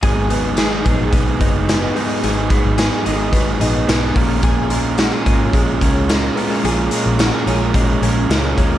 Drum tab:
HH |xxxxxxxo|xxxxxxxo|xxxxxxxo|xxxxxxxx|
SD |--o---o-|--o---o-|--o---o-|--o---o-|
BD |o--ooo--|-o--o--o|o--ooo--|----o--o|